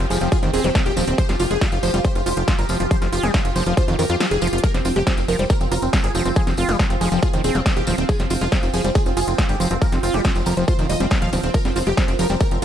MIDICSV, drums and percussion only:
0, 0, Header, 1, 2, 480
1, 0, Start_track
1, 0, Key_signature, -4, "minor"
1, 0, Tempo, 431655
1, 1315, Time_signature, 4, 2, 24, 8
1, 14065, End_track
2, 0, Start_track
2, 0, Title_t, "Drums"
2, 115, Note_on_c, 9, 46, 93
2, 124, Note_on_c, 9, 54, 102
2, 226, Note_off_c, 9, 46, 0
2, 226, Note_off_c, 9, 54, 0
2, 226, Note_on_c, 9, 54, 40
2, 235, Note_on_c, 9, 42, 53
2, 337, Note_off_c, 9, 54, 0
2, 346, Note_off_c, 9, 42, 0
2, 354, Note_on_c, 9, 54, 56
2, 355, Note_on_c, 9, 36, 118
2, 355, Note_on_c, 9, 42, 83
2, 465, Note_off_c, 9, 54, 0
2, 466, Note_off_c, 9, 36, 0
2, 466, Note_off_c, 9, 42, 0
2, 475, Note_on_c, 9, 42, 53
2, 479, Note_on_c, 9, 54, 37
2, 586, Note_off_c, 9, 42, 0
2, 590, Note_off_c, 9, 54, 0
2, 595, Note_on_c, 9, 46, 107
2, 598, Note_on_c, 9, 54, 93
2, 706, Note_off_c, 9, 46, 0
2, 709, Note_off_c, 9, 54, 0
2, 710, Note_on_c, 9, 54, 41
2, 715, Note_on_c, 9, 42, 51
2, 821, Note_off_c, 9, 54, 0
2, 826, Note_off_c, 9, 42, 0
2, 835, Note_on_c, 9, 36, 122
2, 835, Note_on_c, 9, 38, 116
2, 835, Note_on_c, 9, 42, 81
2, 840, Note_on_c, 9, 54, 49
2, 946, Note_off_c, 9, 36, 0
2, 946, Note_off_c, 9, 38, 0
2, 946, Note_off_c, 9, 42, 0
2, 947, Note_off_c, 9, 54, 0
2, 947, Note_on_c, 9, 54, 32
2, 955, Note_on_c, 9, 42, 53
2, 1058, Note_off_c, 9, 54, 0
2, 1066, Note_off_c, 9, 42, 0
2, 1075, Note_on_c, 9, 46, 89
2, 1078, Note_on_c, 9, 54, 102
2, 1186, Note_off_c, 9, 46, 0
2, 1189, Note_off_c, 9, 54, 0
2, 1195, Note_on_c, 9, 42, 54
2, 1199, Note_on_c, 9, 54, 38
2, 1306, Note_off_c, 9, 42, 0
2, 1310, Note_off_c, 9, 54, 0
2, 1315, Note_on_c, 9, 36, 114
2, 1315, Note_on_c, 9, 42, 86
2, 1316, Note_on_c, 9, 54, 48
2, 1426, Note_off_c, 9, 36, 0
2, 1426, Note_off_c, 9, 42, 0
2, 1427, Note_off_c, 9, 54, 0
2, 1435, Note_on_c, 9, 38, 35
2, 1435, Note_on_c, 9, 42, 54
2, 1436, Note_on_c, 9, 54, 38
2, 1546, Note_off_c, 9, 38, 0
2, 1546, Note_off_c, 9, 42, 0
2, 1547, Note_off_c, 9, 54, 0
2, 1551, Note_on_c, 9, 54, 86
2, 1555, Note_on_c, 9, 46, 99
2, 1662, Note_off_c, 9, 54, 0
2, 1667, Note_off_c, 9, 46, 0
2, 1676, Note_on_c, 9, 42, 53
2, 1676, Note_on_c, 9, 54, 36
2, 1787, Note_off_c, 9, 42, 0
2, 1787, Note_off_c, 9, 54, 0
2, 1795, Note_on_c, 9, 36, 115
2, 1795, Note_on_c, 9, 38, 111
2, 1795, Note_on_c, 9, 42, 82
2, 1795, Note_on_c, 9, 54, 53
2, 1906, Note_off_c, 9, 36, 0
2, 1907, Note_off_c, 9, 38, 0
2, 1907, Note_off_c, 9, 42, 0
2, 1907, Note_off_c, 9, 54, 0
2, 1908, Note_on_c, 9, 54, 39
2, 1915, Note_on_c, 9, 42, 55
2, 2020, Note_off_c, 9, 54, 0
2, 2027, Note_off_c, 9, 42, 0
2, 2031, Note_on_c, 9, 54, 85
2, 2035, Note_on_c, 9, 46, 89
2, 2142, Note_off_c, 9, 54, 0
2, 2146, Note_off_c, 9, 46, 0
2, 2155, Note_on_c, 9, 42, 54
2, 2157, Note_on_c, 9, 54, 44
2, 2267, Note_off_c, 9, 42, 0
2, 2268, Note_off_c, 9, 54, 0
2, 2275, Note_on_c, 9, 36, 116
2, 2275, Note_on_c, 9, 42, 82
2, 2282, Note_on_c, 9, 54, 48
2, 2386, Note_off_c, 9, 36, 0
2, 2387, Note_off_c, 9, 42, 0
2, 2393, Note_off_c, 9, 54, 0
2, 2396, Note_on_c, 9, 42, 57
2, 2397, Note_on_c, 9, 54, 38
2, 2507, Note_off_c, 9, 42, 0
2, 2508, Note_off_c, 9, 54, 0
2, 2515, Note_on_c, 9, 46, 105
2, 2521, Note_on_c, 9, 54, 95
2, 2627, Note_off_c, 9, 46, 0
2, 2632, Note_off_c, 9, 54, 0
2, 2636, Note_on_c, 9, 42, 52
2, 2747, Note_off_c, 9, 42, 0
2, 2754, Note_on_c, 9, 54, 54
2, 2755, Note_on_c, 9, 36, 117
2, 2756, Note_on_c, 9, 38, 117
2, 2756, Note_on_c, 9, 42, 81
2, 2865, Note_off_c, 9, 54, 0
2, 2866, Note_off_c, 9, 36, 0
2, 2867, Note_off_c, 9, 38, 0
2, 2867, Note_off_c, 9, 42, 0
2, 2872, Note_on_c, 9, 54, 36
2, 2876, Note_on_c, 9, 42, 55
2, 2983, Note_off_c, 9, 54, 0
2, 2987, Note_off_c, 9, 42, 0
2, 2989, Note_on_c, 9, 54, 100
2, 2995, Note_on_c, 9, 46, 88
2, 3101, Note_off_c, 9, 54, 0
2, 3106, Note_off_c, 9, 46, 0
2, 3112, Note_on_c, 9, 54, 34
2, 3115, Note_on_c, 9, 42, 55
2, 3223, Note_off_c, 9, 54, 0
2, 3227, Note_off_c, 9, 42, 0
2, 3235, Note_on_c, 9, 36, 116
2, 3235, Note_on_c, 9, 42, 85
2, 3235, Note_on_c, 9, 54, 51
2, 3346, Note_off_c, 9, 36, 0
2, 3346, Note_off_c, 9, 54, 0
2, 3347, Note_off_c, 9, 42, 0
2, 3352, Note_on_c, 9, 54, 35
2, 3356, Note_on_c, 9, 38, 37
2, 3356, Note_on_c, 9, 42, 55
2, 3463, Note_off_c, 9, 54, 0
2, 3467, Note_off_c, 9, 38, 0
2, 3467, Note_off_c, 9, 42, 0
2, 3475, Note_on_c, 9, 46, 100
2, 3477, Note_on_c, 9, 54, 85
2, 3587, Note_off_c, 9, 46, 0
2, 3588, Note_off_c, 9, 54, 0
2, 3595, Note_on_c, 9, 42, 56
2, 3607, Note_on_c, 9, 54, 39
2, 3707, Note_off_c, 9, 42, 0
2, 3712, Note_off_c, 9, 54, 0
2, 3712, Note_on_c, 9, 54, 53
2, 3715, Note_on_c, 9, 36, 120
2, 3716, Note_on_c, 9, 38, 119
2, 3716, Note_on_c, 9, 42, 83
2, 3823, Note_off_c, 9, 54, 0
2, 3827, Note_off_c, 9, 36, 0
2, 3827, Note_off_c, 9, 38, 0
2, 3827, Note_off_c, 9, 42, 0
2, 3834, Note_on_c, 9, 54, 34
2, 3836, Note_on_c, 9, 42, 57
2, 3945, Note_off_c, 9, 54, 0
2, 3947, Note_off_c, 9, 42, 0
2, 3954, Note_on_c, 9, 54, 90
2, 3955, Note_on_c, 9, 46, 89
2, 4066, Note_off_c, 9, 46, 0
2, 4066, Note_off_c, 9, 54, 0
2, 4073, Note_on_c, 9, 54, 42
2, 4076, Note_on_c, 9, 42, 59
2, 4184, Note_off_c, 9, 54, 0
2, 4187, Note_off_c, 9, 42, 0
2, 4195, Note_on_c, 9, 36, 119
2, 4196, Note_on_c, 9, 42, 86
2, 4196, Note_on_c, 9, 54, 51
2, 4306, Note_off_c, 9, 36, 0
2, 4307, Note_off_c, 9, 42, 0
2, 4307, Note_off_c, 9, 54, 0
2, 4315, Note_on_c, 9, 54, 36
2, 4316, Note_on_c, 9, 42, 55
2, 4426, Note_off_c, 9, 54, 0
2, 4427, Note_off_c, 9, 42, 0
2, 4436, Note_on_c, 9, 46, 105
2, 4440, Note_on_c, 9, 54, 98
2, 4547, Note_off_c, 9, 46, 0
2, 4551, Note_off_c, 9, 54, 0
2, 4551, Note_on_c, 9, 54, 39
2, 4555, Note_on_c, 9, 42, 56
2, 4662, Note_off_c, 9, 54, 0
2, 4667, Note_off_c, 9, 42, 0
2, 4675, Note_on_c, 9, 38, 119
2, 4675, Note_on_c, 9, 42, 81
2, 4680, Note_on_c, 9, 54, 57
2, 4787, Note_off_c, 9, 38, 0
2, 4787, Note_off_c, 9, 42, 0
2, 4791, Note_off_c, 9, 54, 0
2, 4795, Note_on_c, 9, 42, 57
2, 4799, Note_on_c, 9, 54, 37
2, 4907, Note_off_c, 9, 42, 0
2, 4910, Note_off_c, 9, 54, 0
2, 4910, Note_on_c, 9, 54, 86
2, 4915, Note_on_c, 9, 42, 55
2, 4975, Note_off_c, 9, 42, 0
2, 4975, Note_on_c, 9, 42, 64
2, 5021, Note_off_c, 9, 54, 0
2, 5033, Note_on_c, 9, 54, 36
2, 5035, Note_off_c, 9, 42, 0
2, 5035, Note_on_c, 9, 42, 76
2, 5095, Note_off_c, 9, 42, 0
2, 5095, Note_on_c, 9, 42, 89
2, 5145, Note_off_c, 9, 54, 0
2, 5155, Note_off_c, 9, 42, 0
2, 5155, Note_on_c, 9, 36, 121
2, 5155, Note_on_c, 9, 42, 85
2, 5156, Note_on_c, 9, 54, 50
2, 5266, Note_off_c, 9, 36, 0
2, 5266, Note_off_c, 9, 42, 0
2, 5267, Note_off_c, 9, 54, 0
2, 5275, Note_on_c, 9, 38, 38
2, 5275, Note_on_c, 9, 42, 55
2, 5277, Note_on_c, 9, 54, 38
2, 5387, Note_off_c, 9, 38, 0
2, 5387, Note_off_c, 9, 42, 0
2, 5389, Note_off_c, 9, 54, 0
2, 5391, Note_on_c, 9, 54, 92
2, 5395, Note_on_c, 9, 46, 105
2, 5502, Note_off_c, 9, 54, 0
2, 5507, Note_off_c, 9, 46, 0
2, 5516, Note_on_c, 9, 42, 56
2, 5517, Note_on_c, 9, 54, 43
2, 5627, Note_off_c, 9, 42, 0
2, 5628, Note_off_c, 9, 54, 0
2, 5635, Note_on_c, 9, 36, 121
2, 5636, Note_on_c, 9, 38, 124
2, 5636, Note_on_c, 9, 42, 83
2, 5636, Note_on_c, 9, 54, 52
2, 5746, Note_off_c, 9, 36, 0
2, 5747, Note_off_c, 9, 38, 0
2, 5747, Note_off_c, 9, 42, 0
2, 5747, Note_off_c, 9, 54, 0
2, 5753, Note_on_c, 9, 54, 39
2, 5755, Note_on_c, 9, 42, 56
2, 5864, Note_off_c, 9, 54, 0
2, 5867, Note_off_c, 9, 42, 0
2, 5875, Note_on_c, 9, 46, 94
2, 5877, Note_on_c, 9, 54, 96
2, 5987, Note_off_c, 9, 46, 0
2, 5988, Note_off_c, 9, 54, 0
2, 5995, Note_on_c, 9, 42, 58
2, 6001, Note_on_c, 9, 54, 41
2, 6107, Note_off_c, 9, 42, 0
2, 6112, Note_off_c, 9, 54, 0
2, 6115, Note_on_c, 9, 36, 119
2, 6115, Note_on_c, 9, 42, 86
2, 6119, Note_on_c, 9, 54, 57
2, 6226, Note_off_c, 9, 36, 0
2, 6226, Note_off_c, 9, 42, 0
2, 6231, Note_off_c, 9, 54, 0
2, 6235, Note_on_c, 9, 42, 55
2, 6237, Note_on_c, 9, 54, 35
2, 6347, Note_off_c, 9, 42, 0
2, 6348, Note_off_c, 9, 54, 0
2, 6355, Note_on_c, 9, 46, 108
2, 6359, Note_on_c, 9, 54, 95
2, 6466, Note_off_c, 9, 46, 0
2, 6470, Note_off_c, 9, 54, 0
2, 6474, Note_on_c, 9, 54, 42
2, 6475, Note_on_c, 9, 42, 55
2, 6585, Note_off_c, 9, 54, 0
2, 6586, Note_off_c, 9, 42, 0
2, 6595, Note_on_c, 9, 36, 125
2, 6595, Note_on_c, 9, 38, 127
2, 6595, Note_on_c, 9, 42, 86
2, 6599, Note_on_c, 9, 54, 55
2, 6706, Note_off_c, 9, 36, 0
2, 6706, Note_off_c, 9, 38, 0
2, 6706, Note_off_c, 9, 42, 0
2, 6709, Note_off_c, 9, 54, 0
2, 6709, Note_on_c, 9, 54, 34
2, 6715, Note_on_c, 9, 42, 55
2, 6820, Note_off_c, 9, 54, 0
2, 6826, Note_off_c, 9, 42, 0
2, 6835, Note_on_c, 9, 46, 93
2, 6840, Note_on_c, 9, 54, 97
2, 6947, Note_off_c, 9, 46, 0
2, 6951, Note_off_c, 9, 54, 0
2, 6955, Note_on_c, 9, 42, 57
2, 6960, Note_on_c, 9, 54, 44
2, 7067, Note_off_c, 9, 42, 0
2, 7071, Note_off_c, 9, 54, 0
2, 7074, Note_on_c, 9, 54, 58
2, 7075, Note_on_c, 9, 36, 125
2, 7075, Note_on_c, 9, 42, 82
2, 7186, Note_off_c, 9, 36, 0
2, 7186, Note_off_c, 9, 42, 0
2, 7186, Note_off_c, 9, 54, 0
2, 7195, Note_on_c, 9, 38, 39
2, 7195, Note_on_c, 9, 42, 53
2, 7205, Note_on_c, 9, 54, 39
2, 7307, Note_off_c, 9, 38, 0
2, 7307, Note_off_c, 9, 42, 0
2, 7308, Note_off_c, 9, 54, 0
2, 7308, Note_on_c, 9, 54, 87
2, 7315, Note_on_c, 9, 46, 108
2, 7420, Note_off_c, 9, 54, 0
2, 7426, Note_off_c, 9, 46, 0
2, 7435, Note_on_c, 9, 42, 52
2, 7440, Note_on_c, 9, 54, 44
2, 7547, Note_off_c, 9, 42, 0
2, 7551, Note_off_c, 9, 54, 0
2, 7555, Note_on_c, 9, 36, 127
2, 7555, Note_on_c, 9, 38, 121
2, 7555, Note_on_c, 9, 42, 77
2, 7557, Note_on_c, 9, 54, 61
2, 7666, Note_off_c, 9, 36, 0
2, 7666, Note_off_c, 9, 38, 0
2, 7666, Note_off_c, 9, 42, 0
2, 7668, Note_off_c, 9, 54, 0
2, 7675, Note_on_c, 9, 42, 52
2, 7684, Note_on_c, 9, 54, 39
2, 7787, Note_off_c, 9, 42, 0
2, 7795, Note_off_c, 9, 54, 0
2, 7795, Note_on_c, 9, 46, 97
2, 7799, Note_on_c, 9, 54, 92
2, 7907, Note_off_c, 9, 46, 0
2, 7910, Note_off_c, 9, 54, 0
2, 7916, Note_on_c, 9, 42, 54
2, 7918, Note_on_c, 9, 54, 44
2, 8027, Note_off_c, 9, 42, 0
2, 8030, Note_off_c, 9, 54, 0
2, 8035, Note_on_c, 9, 36, 127
2, 8036, Note_on_c, 9, 42, 81
2, 8037, Note_on_c, 9, 54, 55
2, 8147, Note_off_c, 9, 36, 0
2, 8147, Note_off_c, 9, 42, 0
2, 8149, Note_off_c, 9, 54, 0
2, 8156, Note_on_c, 9, 42, 54
2, 8158, Note_on_c, 9, 54, 37
2, 8267, Note_off_c, 9, 42, 0
2, 8269, Note_off_c, 9, 54, 0
2, 8274, Note_on_c, 9, 54, 89
2, 8276, Note_on_c, 9, 46, 116
2, 8385, Note_off_c, 9, 54, 0
2, 8387, Note_off_c, 9, 46, 0
2, 8389, Note_on_c, 9, 54, 39
2, 8396, Note_on_c, 9, 42, 53
2, 8500, Note_off_c, 9, 54, 0
2, 8507, Note_off_c, 9, 42, 0
2, 8515, Note_on_c, 9, 36, 127
2, 8515, Note_on_c, 9, 38, 127
2, 8515, Note_on_c, 9, 42, 79
2, 8519, Note_on_c, 9, 54, 56
2, 8627, Note_off_c, 9, 36, 0
2, 8627, Note_off_c, 9, 38, 0
2, 8627, Note_off_c, 9, 42, 0
2, 8630, Note_off_c, 9, 54, 0
2, 8635, Note_on_c, 9, 42, 53
2, 8635, Note_on_c, 9, 54, 36
2, 8746, Note_off_c, 9, 54, 0
2, 8747, Note_off_c, 9, 42, 0
2, 8749, Note_on_c, 9, 54, 106
2, 8755, Note_on_c, 9, 46, 95
2, 8860, Note_off_c, 9, 54, 0
2, 8867, Note_off_c, 9, 46, 0
2, 8876, Note_on_c, 9, 42, 55
2, 8882, Note_on_c, 9, 54, 40
2, 8987, Note_off_c, 9, 42, 0
2, 8993, Note_off_c, 9, 54, 0
2, 8995, Note_on_c, 9, 36, 127
2, 8995, Note_on_c, 9, 42, 78
2, 9000, Note_on_c, 9, 54, 54
2, 9107, Note_off_c, 9, 36, 0
2, 9107, Note_off_c, 9, 42, 0
2, 9111, Note_off_c, 9, 54, 0
2, 9111, Note_on_c, 9, 54, 42
2, 9115, Note_on_c, 9, 38, 37
2, 9115, Note_on_c, 9, 42, 52
2, 9222, Note_off_c, 9, 54, 0
2, 9226, Note_off_c, 9, 38, 0
2, 9226, Note_off_c, 9, 42, 0
2, 9232, Note_on_c, 9, 54, 102
2, 9235, Note_on_c, 9, 46, 110
2, 9343, Note_off_c, 9, 54, 0
2, 9346, Note_off_c, 9, 46, 0
2, 9355, Note_on_c, 9, 42, 51
2, 9359, Note_on_c, 9, 54, 44
2, 9466, Note_off_c, 9, 42, 0
2, 9471, Note_off_c, 9, 54, 0
2, 9475, Note_on_c, 9, 36, 127
2, 9475, Note_on_c, 9, 38, 122
2, 9475, Note_on_c, 9, 42, 75
2, 9479, Note_on_c, 9, 54, 60
2, 9586, Note_off_c, 9, 38, 0
2, 9586, Note_off_c, 9, 42, 0
2, 9587, Note_off_c, 9, 36, 0
2, 9590, Note_off_c, 9, 54, 0
2, 9595, Note_on_c, 9, 42, 53
2, 9601, Note_on_c, 9, 54, 42
2, 9706, Note_off_c, 9, 42, 0
2, 9712, Note_off_c, 9, 54, 0
2, 9713, Note_on_c, 9, 54, 100
2, 9715, Note_on_c, 9, 46, 100
2, 9824, Note_off_c, 9, 54, 0
2, 9826, Note_off_c, 9, 46, 0
2, 9833, Note_on_c, 9, 54, 46
2, 9835, Note_on_c, 9, 42, 53
2, 9944, Note_off_c, 9, 54, 0
2, 9946, Note_off_c, 9, 42, 0
2, 9955, Note_on_c, 9, 36, 127
2, 9955, Note_on_c, 9, 42, 78
2, 9963, Note_on_c, 9, 54, 54
2, 10066, Note_off_c, 9, 42, 0
2, 10067, Note_off_c, 9, 36, 0
2, 10074, Note_off_c, 9, 54, 0
2, 10075, Note_on_c, 9, 42, 53
2, 10075, Note_on_c, 9, 54, 38
2, 10186, Note_off_c, 9, 42, 0
2, 10186, Note_off_c, 9, 54, 0
2, 10195, Note_on_c, 9, 46, 117
2, 10196, Note_on_c, 9, 54, 94
2, 10306, Note_off_c, 9, 46, 0
2, 10308, Note_off_c, 9, 54, 0
2, 10315, Note_on_c, 9, 42, 51
2, 10319, Note_on_c, 9, 54, 41
2, 10426, Note_off_c, 9, 42, 0
2, 10430, Note_off_c, 9, 54, 0
2, 10435, Note_on_c, 9, 36, 127
2, 10435, Note_on_c, 9, 38, 125
2, 10435, Note_on_c, 9, 42, 78
2, 10438, Note_on_c, 9, 54, 58
2, 10547, Note_off_c, 9, 36, 0
2, 10547, Note_off_c, 9, 38, 0
2, 10547, Note_off_c, 9, 42, 0
2, 10550, Note_off_c, 9, 54, 0
2, 10551, Note_on_c, 9, 54, 39
2, 10555, Note_on_c, 9, 42, 52
2, 10662, Note_off_c, 9, 54, 0
2, 10667, Note_off_c, 9, 42, 0
2, 10675, Note_on_c, 9, 46, 98
2, 10685, Note_on_c, 9, 54, 112
2, 10786, Note_off_c, 9, 46, 0
2, 10790, Note_off_c, 9, 54, 0
2, 10790, Note_on_c, 9, 54, 40
2, 10795, Note_on_c, 9, 42, 53
2, 10901, Note_off_c, 9, 54, 0
2, 10906, Note_off_c, 9, 42, 0
2, 10915, Note_on_c, 9, 36, 127
2, 10915, Note_on_c, 9, 42, 77
2, 10922, Note_on_c, 9, 54, 54
2, 11026, Note_off_c, 9, 42, 0
2, 11027, Note_off_c, 9, 36, 0
2, 11032, Note_off_c, 9, 54, 0
2, 11032, Note_on_c, 9, 54, 38
2, 11035, Note_on_c, 9, 38, 38
2, 11035, Note_on_c, 9, 42, 50
2, 11143, Note_off_c, 9, 54, 0
2, 11147, Note_off_c, 9, 38, 0
2, 11147, Note_off_c, 9, 42, 0
2, 11155, Note_on_c, 9, 46, 108
2, 11162, Note_on_c, 9, 54, 90
2, 11266, Note_off_c, 9, 46, 0
2, 11273, Note_off_c, 9, 54, 0
2, 11275, Note_on_c, 9, 42, 51
2, 11276, Note_on_c, 9, 54, 39
2, 11386, Note_off_c, 9, 42, 0
2, 11387, Note_off_c, 9, 54, 0
2, 11390, Note_on_c, 9, 54, 53
2, 11395, Note_on_c, 9, 36, 127
2, 11395, Note_on_c, 9, 38, 121
2, 11395, Note_on_c, 9, 42, 76
2, 11501, Note_off_c, 9, 54, 0
2, 11507, Note_off_c, 9, 36, 0
2, 11507, Note_off_c, 9, 38, 0
2, 11507, Note_off_c, 9, 42, 0
2, 11516, Note_on_c, 9, 42, 53
2, 11520, Note_on_c, 9, 54, 44
2, 11627, Note_off_c, 9, 42, 0
2, 11631, Note_off_c, 9, 54, 0
2, 11631, Note_on_c, 9, 54, 97
2, 11635, Note_on_c, 9, 46, 100
2, 11742, Note_off_c, 9, 54, 0
2, 11747, Note_off_c, 9, 46, 0
2, 11752, Note_on_c, 9, 54, 42
2, 11755, Note_on_c, 9, 42, 52
2, 11864, Note_off_c, 9, 54, 0
2, 11866, Note_off_c, 9, 42, 0
2, 11875, Note_on_c, 9, 36, 127
2, 11875, Note_on_c, 9, 42, 78
2, 11876, Note_on_c, 9, 54, 55
2, 11986, Note_off_c, 9, 42, 0
2, 11987, Note_off_c, 9, 36, 0
2, 11987, Note_off_c, 9, 54, 0
2, 11994, Note_on_c, 9, 54, 36
2, 11995, Note_on_c, 9, 42, 51
2, 12105, Note_off_c, 9, 54, 0
2, 12106, Note_off_c, 9, 42, 0
2, 12115, Note_on_c, 9, 46, 114
2, 12115, Note_on_c, 9, 54, 97
2, 12226, Note_off_c, 9, 46, 0
2, 12226, Note_off_c, 9, 54, 0
2, 12235, Note_on_c, 9, 42, 49
2, 12235, Note_on_c, 9, 54, 43
2, 12346, Note_off_c, 9, 42, 0
2, 12346, Note_off_c, 9, 54, 0
2, 12349, Note_on_c, 9, 54, 58
2, 12355, Note_on_c, 9, 36, 127
2, 12355, Note_on_c, 9, 38, 117
2, 12355, Note_on_c, 9, 42, 79
2, 12461, Note_off_c, 9, 54, 0
2, 12467, Note_off_c, 9, 36, 0
2, 12467, Note_off_c, 9, 38, 0
2, 12467, Note_off_c, 9, 42, 0
2, 12475, Note_on_c, 9, 42, 52
2, 12479, Note_on_c, 9, 54, 35
2, 12586, Note_off_c, 9, 42, 0
2, 12590, Note_off_c, 9, 54, 0
2, 12595, Note_on_c, 9, 46, 96
2, 12596, Note_on_c, 9, 54, 101
2, 12706, Note_off_c, 9, 46, 0
2, 12707, Note_off_c, 9, 54, 0
2, 12715, Note_on_c, 9, 42, 51
2, 12721, Note_on_c, 9, 54, 40
2, 12827, Note_off_c, 9, 42, 0
2, 12830, Note_off_c, 9, 54, 0
2, 12830, Note_on_c, 9, 54, 56
2, 12835, Note_on_c, 9, 36, 123
2, 12836, Note_on_c, 9, 42, 79
2, 12941, Note_off_c, 9, 54, 0
2, 12947, Note_off_c, 9, 36, 0
2, 12947, Note_off_c, 9, 42, 0
2, 12956, Note_on_c, 9, 38, 35
2, 12956, Note_on_c, 9, 42, 50
2, 12965, Note_on_c, 9, 54, 38
2, 13067, Note_off_c, 9, 38, 0
2, 13067, Note_off_c, 9, 42, 0
2, 13075, Note_on_c, 9, 46, 103
2, 13076, Note_off_c, 9, 54, 0
2, 13082, Note_on_c, 9, 54, 96
2, 13186, Note_off_c, 9, 46, 0
2, 13193, Note_off_c, 9, 54, 0
2, 13195, Note_on_c, 9, 42, 52
2, 13307, Note_off_c, 9, 42, 0
2, 13313, Note_on_c, 9, 54, 55
2, 13315, Note_on_c, 9, 36, 127
2, 13315, Note_on_c, 9, 38, 115
2, 13315, Note_on_c, 9, 42, 75
2, 13424, Note_off_c, 9, 54, 0
2, 13427, Note_off_c, 9, 36, 0
2, 13427, Note_off_c, 9, 38, 0
2, 13427, Note_off_c, 9, 42, 0
2, 13431, Note_on_c, 9, 54, 42
2, 13436, Note_on_c, 9, 42, 51
2, 13542, Note_off_c, 9, 54, 0
2, 13547, Note_off_c, 9, 42, 0
2, 13555, Note_on_c, 9, 46, 94
2, 13557, Note_on_c, 9, 54, 101
2, 13666, Note_off_c, 9, 46, 0
2, 13668, Note_off_c, 9, 54, 0
2, 13669, Note_on_c, 9, 54, 44
2, 13675, Note_on_c, 9, 42, 52
2, 13780, Note_off_c, 9, 54, 0
2, 13787, Note_off_c, 9, 42, 0
2, 13790, Note_on_c, 9, 54, 49
2, 13795, Note_on_c, 9, 36, 127
2, 13795, Note_on_c, 9, 42, 77
2, 13901, Note_off_c, 9, 54, 0
2, 13907, Note_off_c, 9, 36, 0
2, 13907, Note_off_c, 9, 42, 0
2, 13912, Note_on_c, 9, 54, 36
2, 13915, Note_on_c, 9, 42, 53
2, 14023, Note_off_c, 9, 54, 0
2, 14027, Note_off_c, 9, 42, 0
2, 14065, End_track
0, 0, End_of_file